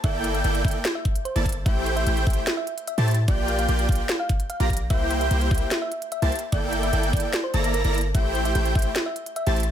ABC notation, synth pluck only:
X:1
M:4/4
L:1/16
Q:1/4=148
K:Gdor
V:1 name="Synth pluck"
e2 z e2 z e2 z e2 z c3 z | e2 z e2 z e2 z e2 z e3 z | d2 z f2 z f2 z f2 z f3 z | e2 z e2 z e2 z e2 z e3 z |
d2 z e2 z d2 z c2 z B3 z | e2 z e2 z e2 z e2 z e3 z |]